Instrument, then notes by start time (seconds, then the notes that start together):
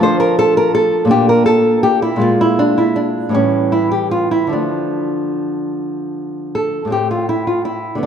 nylon-string guitar
Already playing: F3
0.00 A3 D4 C5
0.20 A#4
0.39 A4
0.57 A#4
0.75 A4
1.05 A#2 A#3
1.09 D4 G4
1.29 A#4
1.46 A4
1.83 G4
2.02 E4
2.16 A#2 G#3 A#3
2.21 F4
2.41 E4
2.59 D4
2.78 E4
2.96 D4
3.29 A2 E3 G3
3.34 C#4
3.72 E4
3.92 G4
4.11 F4
4.31 E4
4.47 D3 F3
4.51 A3 D4
6.55 A4
6.85 A2 A3
6.90 C4 G4
7.11 F4
7.29 E4
7.47 F4
7.65 E4
7.95 D3 B3
8.03 D4